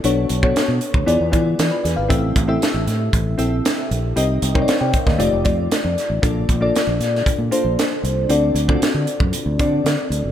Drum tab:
HH |x-x-x-x-x-x-x-x-|x-x-x-x-x-x-x-x-|x-x-x-x-x-x-x-x-|x-x-x-x-x-x-x-x-|
SD |----o-------o-o-|----o-o-----o---|----o--o----o-o-|----o-oo----o---|
BD |---o---o--o-----|o-o-----o-------|---o--oo--o-----|o-o-----o-------|

HH |x-x-x-x-x-x-x-x-|
SD |----o-------o---|
BD |---o---o--o-----|